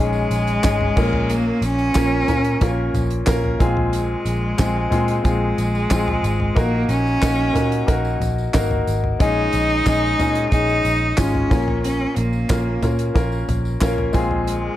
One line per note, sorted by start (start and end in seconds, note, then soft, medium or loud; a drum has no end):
0.00 0.25 A#1 loud
0.00 0.97 A#2 medium
0.00 0.63 G#3 medium
0.00 1.32 G#3 loud
0.00 0.64 C#4 medium
0.00 0.65 D#4 medium
0.00 0.65 G#4 medium
0.00 impact medium
0.13 tambourine soft
0.30 0.58 A#1 medium
0.30 closed hi-hat medium
0.30 tambourine soft
0.47 closed hi-hat soft
0.47 tambourine soft
0.63 0.91 G#1 loud
0.63 0.96 G#3 medium
0.63 0.95 C#4 medium
0.63 0.97 D#4 medium
0.63 0.98 G#4 medium
0.63 kick loud
0.63 snare loud
0.63 clap loud
0.63 closed hi-hat medium
0.63 tambourine medium
0.81 floor tom medium
0.96 1.51 A#1 loud
0.96 1.92 A#2 medium
0.96 1.84 A#3 medium
0.96 1.84 C#4 medium
0.96 1.84 F4 medium
0.96 1.85 A#4 medium
0.96 kick loud
0.96 tambourine soft
0.96 crash medium
1.13 floor tom medium
1.30 1.65 A#3 medium
1.30 closed hi-hat medium
1.30 tambourine medium
1.62 1.89 A#1 loud
1.62 2.95 C#4 loud
1.62 closed hi-hat medium
1.62 tambourine medium
1.78 tambourine soft
1.94 2.23 A#1 loud
1.94 2.24 A#3 medium
1.94 2.24 C#4 medium
1.94 2.25 F4 medium
1.94 2.25 A#4 medium
1.94 kick loud
1.94 snare loud
1.94 clap medium
1.94 closed hi-hat medium
1.94 tambourine medium
2.27 2.55 A#2 loud
2.27 2.57 A#3 medium
2.27 2.58 C#4 medium
2.27 2.58 F4 medium
2.27 2.58 A#4 medium
2.27 closed hi-hat medium
2.27 floor tom medium
2.27 tambourine soft
2.44 closed hi-hat medium
2.61 2.88 A#1 loud
2.61 3.19 A#3 medium
2.61 3.20 C#4 medium
2.61 3.20 F4 medium
2.61 3.20 A#4 medium
2.61 kick loud
2.61 closed hi-hat medium
2.61 tambourine soft
2.94 3.21 A#1 medium
2.94 closed hi-hat medium
2.94 floor tom medium
2.94 tambourine soft
3.10 closed hi-hat medium
3.26 3.55 A#1 loud
3.26 3.60 A#3 medium
3.26 3.60 C#4 medium
3.26 3.59 F4 medium
3.26 3.61 A#4 loud
3.26 kick loud
3.26 snare loud
3.26 clap loud
3.26 closed hi-hat medium
3.26 tambourine medium
3.44 floor tom medium
3.59 4.15 A#1 loud
3.59 4.55 A#2 medium
3.59 4.47 G#3 medium
3.59 4.47 C4 medium
3.59 4.47 F4 medium
3.59 4.48 G#4 loud
3.59 kick medium
3.59 closed hi-hat medium
3.59 tambourine medium
3.77 floor tom medium
3.93 5.22 G#3 medium
3.93 closed hi-hat medium
3.93 tambourine medium
4.25 4.53 A#1 medium
4.25 closed hi-hat medium
4.25 tambourine soft
4.58 4.86 A#1 medium
4.58 4.88 G#3 medium
4.58 4.88 C4 medium
4.58 4.88 F4 medium
4.58 4.89 G#4 medium
4.58 kick loud
4.58 snare loud
4.58 clap medium
4.58 closed hi-hat medium
4.58 tambourine medium
4.90 5.19 A#2 medium
4.90 5.20 G#3 medium
4.90 5.21 C4 medium
4.90 5.21 F4 medium
4.90 5.21 G#4 medium
4.90 closed hi-hat medium
4.90 floor tom medium
4.90 tambourine soft
5.08 closed hi-hat medium
5.08 tambourine soft
5.23 5.52 A#1 loud
5.23 5.82 G#3 medium
5.23 6.60 G#3 medium
5.23 5.82 C4 medium
5.23 5.83 F4 medium
5.23 5.83 G#4 medium
5.23 kick loud
5.23 closed hi-hat medium
5.23 tambourine soft
5.58 5.85 A#1 medium
5.58 closed hi-hat medium
5.58 tambourine soft
5.75 tambourine soft
5.90 6.18 A#1 medium
5.90 6.49 G#3 medium
5.90 6.49 C4 medium
5.90 6.49 F4 medium
5.90 6.50 G#4 medium
5.90 kick loud
5.90 snare loud
5.90 clap loud
5.90 closed hi-hat medium
5.90 tambourine medium
6.08 floor tom medium
6.23 6.51 G#1 medium
6.23 closed hi-hat medium
6.23 tambourine medium
6.40 floor tom soft
6.55 6.84 A#1 loud
6.55 7.51 A#2 medium
6.55 7.14 A#3 medium
6.55 7.14 D#4 medium
6.55 7.15 F#4 medium
6.55 7.15 A#4 loud
6.55 kick loud
6.55 closed hi-hat medium
6.55 tambourine soft
6.59 6.90 A#3 medium
6.89 7.16 A#1 medium
6.89 8.18 C#4 loud
6.89 closed hi-hat medium
6.89 tambourine soft
7.07 tambourine soft
7.22 7.50 A#1 loud
7.22 7.51 A#3 medium
7.22 7.52 D#4 medium
7.22 7.52 F#4 medium
7.22 7.52 A#4 medium
7.22 kick medium
7.22 snare loud
7.22 clap medium
7.22 closed hi-hat medium
7.22 tambourine loud
7.53 7.82 A#2 medium
7.53 7.83 A#3 medium
7.53 7.84 D#4 medium
7.53 7.84 F#4 medium
7.53 7.85 A#4 medium
7.53 closed hi-hat medium
7.53 floor tom medium
7.53 tambourine soft
7.72 closed hi-hat medium
7.86 8.15 A#1 loud
7.86 8.46 A#3 medium
7.86 8.46 D#4 medium
7.86 8.46 F#4 medium
7.86 8.46 A#4 medium
7.86 kick loud
7.86 closed hi-hat medium
7.86 tambourine soft
8.05 tambourine soft
8.20 8.48 A#1 medium
8.20 closed hi-hat medium
8.20 floor tom medium
8.20 tambourine soft
8.38 tambourine soft
8.53 8.82 G#1 medium
8.53 9.12 A#3 medium
8.53 9.12 D#4 medium
8.53 9.13 F#4 medium
8.53 9.13 A#4 medium
8.53 kick loud
8.53 snare loud
8.53 clap medium
8.53 closed hi-hat medium
8.53 tambourine medium
8.71 floor tom medium
8.87 9.15 G#1 medium
8.87 closed hi-hat medium
8.87 tambourine soft
9.04 floor tom soft
9.19 9.47 A#1 loud
9.19 10.15 A#2 medium
9.19 9.78 G#3 medium
9.19 9.78 C#4 medium
9.19 10.48 D#4 loud
9.19 9.79 D#4 medium
9.19 9.79 G#4 medium
9.19 kick loud
9.19 closed hi-hat medium
9.19 tambourine soft
9.53 9.81 A#1 loud
9.53 closed hi-hat medium
9.53 tambourine soft
9.70 tambourine soft
9.86 10.14 A#1 loud
9.86 10.15 G#3 medium
9.86 10.15 C#4 medium
9.86 10.16 D#4 medium
9.86 10.16 G#4 medium
9.86 kick medium
9.86 snare loud
9.86 clap medium
9.86 closed hi-hat medium
9.86 tambourine medium
10.19 10.46 A#2 medium
10.19 10.49 G#3 medium
10.19 10.49 C#4 medium
10.19 10.49 D#4 medium
10.19 10.50 G#4 medium
10.19 closed hi-hat medium
10.19 floor tom medium
10.19 tambourine soft
10.35 closed hi-hat medium
10.50 10.79 A#1 loud
10.50 11.10 G#3 medium
10.50 11.10 C#4 medium
10.50 11.18 D#4 loud
10.50 11.11 D#4 medium
10.50 11.11 G#4 medium
10.50 kick loud
10.50 closed hi-hat medium
10.50 tambourine soft
10.69 tambourine soft
10.85 11.12 A#1 medium
10.85 closed hi-hat medium
10.85 tambourine soft
11.17 11.45 G#1 loud
11.17 11.51 G#3 medium
11.17 11.83 C#4 medium
11.17 11.49 C#4 medium
11.17 11.51 D#4 medium
11.17 11.50 F4 medium
11.17 kick loud
11.17 snare loud
11.17 clap loud
11.17 closed hi-hat medium
11.17 tambourine medium
11.35 floor tom medium
11.50 12.05 A#1 medium
11.50 12.46 A#2 medium
11.50 12.37 A#3 medium
11.50 12.38 C#4 medium
11.50 12.38 F4 medium
11.50 12.39 A#4 medium
11.50 kick loud
11.50 closed hi-hat medium
11.50 tambourine medium
11.68 floor tom medium
11.83 12.17 C#4 medium
11.83 closed hi-hat medium
11.83 tambourine medium
12.16 12.44 A#1 medium
12.16 13.15 A#3 medium
12.16 closed hi-hat medium
12.16 tambourine soft
12.33 tambourine soft
12.49 12.77 A#1 loud
12.49 12.79 A#3 medium
12.49 12.79 C#4 medium
12.49 12.79 F4 medium
12.49 12.79 A#4 medium
12.49 kick loud
12.49 snare loud
12.49 clap medium
12.49 closed hi-hat medium
12.49 tambourine loud
12.82 13.10 A#2 medium
12.82 13.12 A#3 medium
12.82 13.12 C#4 medium
12.82 13.12 F4 medium
12.82 13.12 A#4 medium
12.82 closed hi-hat medium
12.82 floor tom medium
12.82 tambourine soft
12.99 closed hi-hat medium
12.99 tambourine soft
13.14 13.43 A#1 loud
13.14 13.73 A#3 medium
13.14 13.73 C#4 medium
13.14 13.73 F4 medium
13.14 13.74 A#4 medium
13.14 kick loud
13.14 closed hi-hat medium
13.14 tambourine soft
13.32 tambourine soft
13.49 13.76 A#1 medium
13.49 closed hi-hat medium
13.49 floor tom medium
13.49 tambourine soft
13.65 tambourine soft
13.81 14.09 A#1 medium
13.81 14.14 A#3 loud
13.81 14.14 C#4 medium
13.81 14.13 F4 medium
13.81 14.15 A#4 loud
13.81 kick loud
13.81 snare loud
13.81 clap loud
13.81 closed hi-hat medium
13.81 tambourine medium
13.98 floor tom medium
14.13 14.68 A#1 medium
14.13 14.77 A#2 medium
14.13 14.77 G#3 medium
14.13 14.77 C4 medium
14.13 14.77 F4 medium
14.13 14.77 G#4 loud
14.13 kick loud
14.13 closed hi-hat medium
14.13 tambourine soft
14.31 floor tom medium
14.47 14.77 G#3 medium
14.47 closed hi-hat medium
14.47 tambourine soft